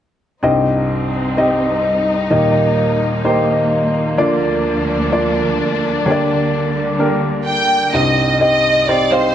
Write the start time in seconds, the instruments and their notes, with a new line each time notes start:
0.42 upright piano C2 G2 C4 D#4 G4 D#5, string section G3 C4 D#4
1.37 upright piano C4 D#4 G4 D#5
2.30 upright piano D#2 A#2 A#3 D#4 G4 D#5, string section A#3
3.24 upright piano A#3 D#4 G4 C5
4.18 string section D2 F3 D4, upright piano D2 D3 A#3 D4 F4 D5
5.12 upright piano A#3 D4 F4 D5
6.06 upright piano D2 D3 A#3 D4 G4 C#5, string section D3 G3
6.12 upright piano D5
6.99 upright piano A#3 D4 G4 A#4
7.47 violin section G5
7.93 upright piano C2 G2 C4 D#4 G4 D#5, violin section D#5
8.40 upright piano C4 D#4 G4 D#5, violin section D#5
8.88 upright piano C4 D#4 G4 C5, violin section D5
9.11 upright piano C4 D#4 G4 F5, violin section C5